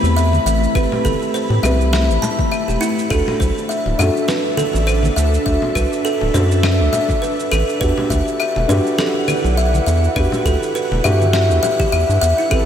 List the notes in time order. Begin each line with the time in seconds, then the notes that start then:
Already playing: A3 C4 E4 G4 C5 B5
0.03 E2, high bongo, shaker
0.17 E5, shaker
0.33 high conga, shaker
0.46 A1 E5, shaker
0.63 shaker
0.74 A1 C4 G4 B4, kick, claves, shaker
0.92 low conga
1.04 G1 A4, kick, high bongo, high conga, shaker
1.22 shaker
1.34 C5, shaker
1.50 A2, high bongo, high conga
1.63 C2 C4 G4 B4 E5, low conga, claves, shaker
1.81 shaker
1.93 E5, snare, shaker
2.09 A1, shaker
2.22 A5, low conga, shaker
2.39 kick, high bongo, high conga, shaker
2.52 E5, claves, shaker
2.68 E1 G4, shaker
2.81 E4, shaker
2.99 shaker
3.09 D2 D4 F#4 A4 E5, kick, claves, shaker
3.13 A4
3.28 low conga
3.40 C2 C5, kick, high bongo, high conga, shaker
3.58 shaker
3.69 E5, shaker
3.86 D1, high bongo, high conga
3.98 F#2 D4 F#4 E5, low conga, claves, shaker
4.02 A4
4.17 shaker
4.28 B4, snare, shaker
4.57 A4, high conga, shaker
4.73 A1, high bongo, shaker
4.87 C5, claves, shaker
5.03 high conga, shaker
5.16 D2 E5, shaker
5.34 shaker
5.45 D2 D4 F#4 A4 E5, kick, shaker
5.62 low conga
5.75 C2 B4, kick, claves, shaker
5.93 shaker
6.05 A4, shaker
6.21 D1, high bongo, high conga
6.34 F#2 D4 F#4 A4 C5, low conga, shaker
6.51 shaker
6.63 E5, snare, claves, shaker
6.81 D2
6.93 E5, low conga, shaker
7.09 kick, high bongo, high conga, shaker
7.22 B4, shaker
7.40 shaker
7.52 A1 A4, claves, shaker
7.69 shaker
7.79 E2 D4 E4 F#4 B4 F#5, kick, shaker
7.84 G4
7.98 low conga
8.10 D2 E5, kick, high bongo, high conga, shaker
8.28 shaker
8.40 E5, claves, shaker
8.56 E1, high bongo, high conga
8.68 G2 D4 F#4 B4, low conga, shaker
8.72 G4
8.87 shaker
8.98 A4, snare, shaker
9.28 B4, high conga, claves, shaker
9.44 B1, high bongo, shaker
9.57 E5, shaker
9.74 high conga, shaker
9.86 E2 E5, shaker
10.04 shaker
10.15 E2 D4 F#4 G4 B4, kick, claves, shaker
10.32 low conga, shaker
10.45 D2 A4, kick, high bongo, high conga, shaker
10.63 shaker
10.75 B4, shaker
10.92 E1, high bongo, high conga
11.04 G2 D4 F#4 G4 E5, low conga, claves, shaker
11.22 high conga, shaker
11.33 E5, snare, shaker
11.51 E2, shaker
11.63 E5, low conga, shaker
11.80 G4, kick, high bongo, high conga, shaker
11.92 E2 E5, claves, shaker
12.09 G2, shaker
12.21 E2 E5, shaker
12.38 E4, shaker
12.50 A1 A3 C4 E4 G4 A4 B4 A5 B5, kick, claves, shaker